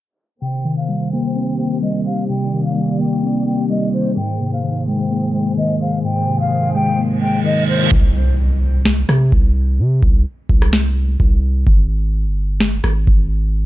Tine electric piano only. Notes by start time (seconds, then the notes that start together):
0.42 C3
0.65 D#3
0.89 G3
1.13 A#3
1.36 C4
1.59 A#3
1.82 G3
2.30 C3
2.53 D#3
2.76 G3
3.00 A#3
3.23 C4
3.46 A#3
3.70 G3
4.17 G#2
4.40 C3
4.64 D#3
4.88 G#3
5.10 A#3
5.33 G#3
5.57 D#3
6.04 G#2
6.28 C3
6.51 D#3
6.75 G#3
6.99 A#3
7.21 G#3
7.44 D#3